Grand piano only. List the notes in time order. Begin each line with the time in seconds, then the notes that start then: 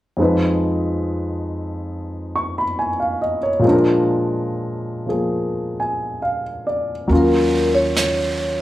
0.17 F2 F3 G#3 D#4
0.22 B4
2.36 C#6
2.58 B5
2.79 G#5
3.00 F5
3.22 D#5
3.43 C#5
3.60 A#2 F3
3.65 G#3 D4
3.70 A#4
5.06 F3 A#3 G#4
5.80 G#5
6.22 F5
6.67 D5
7.08 F#3 A#3 C#4
7.13 F4